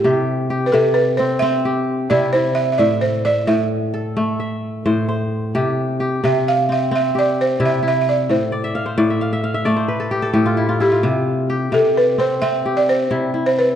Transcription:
<<
  \new Staff \with { instrumentName = "Balafon" } { \time 12/8 \key c \major \tempo 4. = 87 g'4~ g'16. b'32 a'8 b'8 c''8 e''4. d''8 c''8 e''16. e''32 | d''8 c''8 d''8 e''2 r2 r8 | r4. e''8 f''8 e''8 e''8 d''8 c''8 e''8 e''16. e''32 d''8 | c''2 r2. r8 g'8~ |
g'4. a'8 b'8 c''8 e''8. d''16 c''4~ c''16 c''16 b'8 | }
  \new Staff \with { instrumentName = "Kora" } { \time 12/8 \key c \major <g' c''>4 g'4. c'4 g'4 e'8 e'4 | e''4 e''4. a'4 e''4 c''8 c''4 | g'4 g'4. c'4 g'4 e'8 e'4~ | e'8 d''16 e''16 f''16 c''16 d''16 e''16 f''16 e''16 f''16 e''16 d''16 c''16 b'16 a'16 g'16 a'16 g'16 f'16 e'16 f'16 e'16 f'16~ |
f'16 r8. g'4. c'4 g'4 e'8 e'4 | }
  \new Staff \with { instrumentName = "Kora" } { \clef bass \time 12/8 \key c \major c4 r8 c4 r8 c'4 r8 c4 r8 | a,4 r8 a,4 r8 a4 r8 a,4 r8 | c4 r8 c4 r8 c'4 r8 c4 r8 | a,4 r8 a,4 r8 a4 r8 a,4 r8 |
c4 r8 c4 r8 c'4 r8 c4 r8 | }
>>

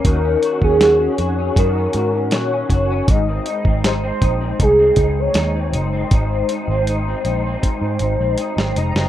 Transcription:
<<
  \new Staff \with { instrumentName = "Soft synth lead" } { \time 4/4 \key aes \mixolydian \tempo 4 = 79 bes'8. aes'8. aes'8 bes'4 des''4 | ees''4 c''4 aes'8. des''8. c''8~ | c''2.~ c''8 bes''8 | }
  \new Staff \with { instrumentName = "Clean electric guitar" } { \time 4/4 \key aes \mixolydian <ees ges'>16 des'16 ges'16 des'16 ges'16 des'16 ges'16 des'16 <ees ges'>16 des'16 ges'16 des'16 ges'16 des'16 ges'16 des'16 | <aes, ees'>16 c'16 ees'16 c'16 ees'16 c'16 ees'16 c'16 <aes, ees'>16 c'16 ees'8 ees'16 c'16 ees'16 c'16 | <aes, ees'>16 c'16 ees'16 c'16 ees'16 c'16 ees'16 c'16 <aes, ees'>16 c'16 ees'16 c'16 ees'16 c'16 ees'16 c'16 | }
  \new Staff \with { instrumentName = "Picked electric bass" } { \clef bass \time 4/4 \key aes \mixolydian ees,8 r16 ees,8. f,8 ges,8 aes,8 bes,8 ges,,8 | aes,,8 r16 aes,,8. bes,,8 c,8 des,8 ees,8 ges,,8 | aes,,8 r16 aes,,8. bes,,8 r16 aes,16 aes,,16 bes,,16 r16 aes,,16 f,,16 ges,,16 | }
  \new DrumStaff \with { instrumentName = "Drums" } \drummode { \time 4/4 <hh bd>8 hh16 bd16 <hh sn>8 hh8 <hh bd>8 hh8 <hh sn>8 <hh bd>8 | <hh bd>8 hh16 bd16 <hh sn>8 <hh bd>8 <hh bd>8 <hh bd>8 <hh sn>8 hh8 | <hh bd>8 hh8 hh8 hh8 <hh bd>8 hh8 hh16 sn16 hh16 sn16 | }
>>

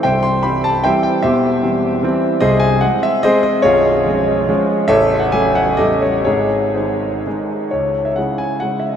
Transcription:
<<
  \new Staff \with { instrumentName = "Grand piano" } { \time 3/4 \key c \major \tempo 4 = 144 <c'' e'' g''>8 c'''8 b''8 a''8 <c'' e'' g''>8 g''8 | <g' c'' e''>2~ <g' c'' e''>8 r8 | \key gis \phrygian <gis' bis' dis''>8 gis''8 fis''8 e''8 <gis' bis' dis''>8 dis''8 | <eis' gis' cis''>2~ <eis' gis' cis''>8 r8 |
<a' cis'' e''>8. fis''16 gis''8 fis''8 <g' a' dis''>8 cis''8 | <gis' cis''>4 <dis' gis' bis'>4. r8 | cis''8. e''16 fis''8 gis''8 fis''8 e''16 dis''16 | }
  \new Staff \with { instrumentName = "Grand piano" } { \clef bass \time 3/4 \key c \major <c,, c,>4 <e g c'>4 <e g c'>4 | <e,, e,>4 <e g c'>4 <e g c'>4 | \key gis \phrygian <bis,,, bis,,>4 <gis bis>4 <gis bis>4 | <b,,, b,,>4 <eis gis cis'>4 <eis gis cis'>4 |
<a,,, a,,>4 <fis a cis'>4 <a,,, a,, g cis'>4 | <gis,, gis,>4 <dis gis>4 <dis gis dis'>4 | cis,4 <cis gis e'>4 <cis gis e'>4 | }
>>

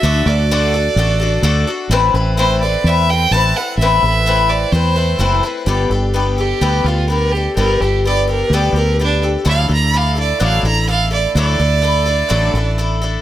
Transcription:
<<
  \new Staff \with { instrumentName = "Fiddle" } { \time 4/4 \key g \major \tempo 4 = 127 e''8 d''2. r8 | r4 c''8 d''8 e''8 g''8 a''8 fis''8 | e''4. d''8 c''4. r8 | r4. g'4 f'8 bes'8 g'8 |
bes'8 g'8 d''8 bes'8 d''8 bes'8 d'8 r8 | f''8 bes''8 f''8 d''8 f''8 bes''8 f''8 d''8 | d''2. r4 | }
  \new Staff \with { instrumentName = "Twelve-string acoustic guitar" } { \time 4/4 \key g \major <d a d' fis' a'>8 <d' fis' a'>8 <d a d' fis' a'>8 <d' fis' a'>8 <a d' fis' a'>8 <d' fis' a'>8 <d a d' fis' a'>8 <d' fis' a'>8 | <a, e a c' e' b'>8 <a c' e' b'>8 <a, e a c' e' b'>8 <a c' e' b'>8 <a c' e' b'>8 <a c' e' b'>8 <a, e a c' e' b'>8 <a c' e' b'>8 | <a, e a c' e' b'>8 <a c' e' b'>8 <a, e a c' e' b'>8 <a c' e' b'>8 <a c' e' b'>8 <a c' e' b'>8 <a, e a c' e' b'>8 <c' e' b'>8 | <g b d' g' a'>8 <d' g' a'>8 <b d' g' a'>8 <d' g' a'>8 <g b d' g' a'>8 <d' g' a'>8 <b d' g' a'>8 <d' g' a'>8 |
<g b d' g' a'>8 <d' g' a'>8 <b d' g' a'>8 <d' g' a'>8 <g b d' g' a'>8 <d' g' a'>8 <b d' g' a'>8 <d' g' a'>8 | <d fis a d' e' a'>8 <a d' e' a'>8 <a d' e' a'>8 <a d' e' a'>8 <d fis a d' e' a'>8 <a d' e' a'>8 <a d' e' a'>8 <a d' e' a'>8 | <d fis a d' e' a'>8 <a d' e' a'>8 <a d' e' a'>8 <a d' e' a'>8 <d fis a d' e' a'>8 <a d' e' a'>8 <a d' e' a'>8 <a d' e' a'>8 | }
  \new Staff \with { instrumentName = "Fingered electric bass" } { \clef bass \time 4/4 \key g \major d,8 d,4. a,,4 d,8 r8 | a,,8 a,,4. e,4 a,,8 r8 | a,,8 a,,4. e,4 fis,,8 r8 | g,,8 g,,4. d,8 d,4. |
g,,8 g,,4. d,8 d,4. | d,8 d,4. a,,8 a,,4. | d,8 d,4. a,,8 a,,4. | }
>>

